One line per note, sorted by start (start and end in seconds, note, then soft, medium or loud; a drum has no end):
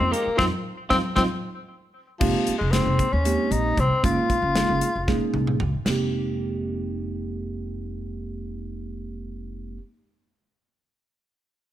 0.00 0.11 F2 medium
0.00 0.10 G#3 medium
0.00 0.10 A#3 medium
0.00 0.10 C4 medium
0.00 0.14 C4 medium
0.00 0.10 D#4 medium
0.00 0.11 F4 medium
0.11 0.28 G#3 medium
0.11 0.28 A#3 medium
0.11 0.38 A#3 medium
0.11 0.28 D#4 medium
0.11 0.28 G4 medium
0.11 closed hi-hat medium
0.26 muted upright bass stroke soft
0.37 0.49 F2 medium
0.37 0.46 C4 medium
0.37 0.46 C4 loud
0.37 0.45 C4 medium
0.37 0.46 D#4 medium
0.37 0.46 F4 loud
0.37 0.47 F4 medium
0.37 kick medium
0.37 snare medium
0.37 high conga medium
0.89 1.01 F2 medium
0.89 0.96 C4 loud
0.89 0.99 C4 medium
0.89 0.99 C4 loud
0.89 0.98 D#4 medium
0.89 0.99 D#4 medium
0.89 0.99 F4 medium
0.89 kick medium
0.89 snare medium
0.89 high conga medium
1.15 1.27 F2 medium
1.15 1.22 C4 loud
1.15 1.25 C4 medium
1.15 1.26 C4 medium
1.15 1.25 D#4 medium
1.15 1.25 F4 medium
1.15 kick medium
1.15 snare medium
1.15 high conga medium
2.20 2.32 F1 medium
2.20 2.57 F3 medium
2.20 2.54 G#3 medium
2.20 2.54 A#3 medium
2.20 2.54 C4 medium
2.20 2.54 D#4 medium
2.20 2.54 G4 medium
2.20 kick loud
2.20 crash medium
2.47 muted upright bass stroke soft
2.47 closed hi-hat medium
2.58 2.83 F1 medium
2.58 2.72 G#3 medium
2.71 3.06 G#3 medium
2.71 3.06 A#3 medium
2.71 3.14 C4 medium
2.71 3.06 C4 medium
2.71 3.06 D#4 medium
2.71 3.06 G#4 medium
2.71 snare medium
2.71 closed hi-hat medium
2.86 2.97 F1 medium
2.99 kick medium
2.99 closed hi-hat medium
3.12 3.35 D#2 medium
3.12 3.53 C#4 medium
3.24 3.75 G#3 medium
3.24 3.75 A#3 medium
3.24 3.75 C4 medium
3.24 3.75 D#4 medium
3.24 3.75 G4 medium
3.24 closed hi-hat medium
3.51 3.74 A#1 medium
3.51 3.81 D#4 medium
3.51 closed hi-hat soft
3.78 3.89 C2 medium
3.78 4.04 C4 medium
3.78 kick medium
3.78 closed hi-hat soft
3.90 muted upright bass stroke soft
4.03 4.15 F#1 medium
4.03 4.37 G#3 medium
4.03 4.37 A#3 medium
4.03 4.37 C#4 medium
4.03 4.37 D#4 medium
4.03 4.37 F4 medium
4.03 5.31 F4 medium
4.03 kick medium
4.03 closed hi-hat medium
4.30 muted upright bass stroke soft
4.30 kick medium
4.30 closed hi-hat soft
4.42 4.65 F#1 medium
4.55 4.89 G#3 medium
4.55 4.89 A#3 soft
4.55 4.89 C#4 medium
4.55 4.89 D#4 medium
4.55 4.89 G#4 medium
4.55 snare loud
4.55 closed hi-hat medium
4.69 4.80 F#1 medium
4.81 closed hi-hat soft
4.96 5.18 F1 medium
5.08 5.58 G#3 medium
5.08 5.58 A#3 medium
5.08 5.58 C#4 medium
5.08 5.58 D#4 medium
5.08 5.58 G#4 medium
5.08 kick medium
5.08 snare soft
5.34 5.57 C2 medium
5.34 high tom medium
5.47 mid tom medium
5.60 5.72 C#2 medium
5.60 mid tom medium
5.74 muted upright bass stroke soft
5.85 9.77 F1 medium
5.85 9.76 G#3 medium
5.85 9.78 A#3 medium
5.85 9.78 C4 medium
5.85 9.79 D#4 medium
5.85 snare medium
5.85 splash medium
5.89 9.80 G4 medium